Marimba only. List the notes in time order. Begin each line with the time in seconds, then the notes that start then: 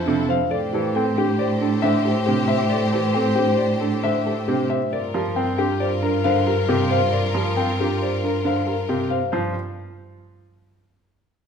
Already playing: F4
0.06 D4
0.29 C5
0.51 A4
0.73 G4
0.95 A4
1.17 D4
1.39 C5
1.61 D4
1.84 C5
2.05 G4
2.28 D4
2.49 C5
2.72 A4
2.93 G4
3.15 A4
3.38 D4
3.60 C5
3.82 D4
4.04 C5
4.26 G4
4.49 D4
4.70 C5
4.93 A#4
5.14 G4
5.36 A#4
5.58 D4
5.81 C5
6.03 D4
6.25 C5
6.47 G4
6.91 C5
7.13 A#4
7.35 G4
7.58 A#4
7.80 D4
8.02 C5
8.24 D4
8.46 C5
8.67 G4
9.11 C5
9.33 F4